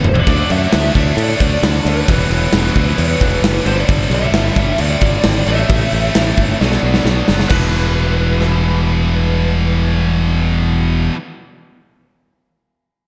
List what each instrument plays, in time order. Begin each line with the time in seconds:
0.04 fingered electric bass E1, mid tom
0.09 lead electric guitar C5
0.15 lead electric guitar D5, floor tom
0.26 fingered electric bass D2, distorted electric guitar D3 A3 D4 F#4, kick, crash
0.50 fingered electric bass F#2, lead electric guitar E5, crash
0.72 fingered electric bass D2, snare, crash
0.94 fingered electric bass D2, distorted electric guitar D3 A3 D4 F#4, kick, crash
1.17 fingered electric bass A2, crash
1.23 lead electric guitar D5
1.40 fingered electric bass D2, kick, crash
1.63 fingered electric bass D2, snare, crash
1.85 fingered electric bass D2, crash
1.90 lead electric guitar B4
2.06 fingered electric bass E1, distorted electric guitar E2 B2 E3 G3 B3 E4, kick, crash
2.11 distorted electric guitar E3
2.30 fingered electric bass E1, crash
2.52 fingered electric bass E1, snare, crash
2.74 fingered electric bass D2, distorted electric guitar E3 G3 B3 E4, kick, crash
2.78 distorted electric guitar E2 B2
2.98 fingered electric bass E2, crash
3.21 fingered electric bass E1, kick, crash
3.42 fingered electric bass F#1, snare, crash
3.64 fingered electric bass G1, distorted electric guitar G2 D3 G3 B3 D4, lead electric guitar C5, crash
3.80 lead electric guitar D5
3.88 fingered electric bass G1, kick, crash
4.10 fingered electric bass B1, crash
4.15 lead electric guitar E5
4.32 fingered electric bass G1, distorted electric guitar G2 D3 G3 B3 D4, snare, crash
4.56 fingered electric bass G1, kick, crash
4.78 fingered electric bass D2, lead electric guitar D5, crash
5.01 fingered electric bass G1, kick, crash
5.24 fingered electric bass G#1, snare, crash
5.45 fingered electric bass A1, distorted electric guitar A2 E3 A3 C4 E4, lead electric guitar E5, crash
5.69 fingered electric bass A1, kick, crash
5.92 fingered electric bass A1, crash
6.15 fingered electric bass A1, distorted electric guitar A2 E3 A3 C4 E4, snare, crash
6.37 fingered electric bass G1, kick, crash
6.59 fingered electric bass B1, distorted electric guitar B2 F#3 B3 D4, snare
6.64 lead electric guitar D5
6.72 snare
6.83 fingered electric bass B1
6.94 snare
7.05 fingered electric bass B1, snare
7.27 fingered electric bass F#1, distorted electric guitar B2 F#3 B3 D4, snare
7.39 snare
7.49 fingered electric bass E1, distorted electric guitar E2 B2 E3 G3 B3, lead electric guitar B4, kick, crash
7.53 distorted electric guitar E3 E4
8.41 cross-stick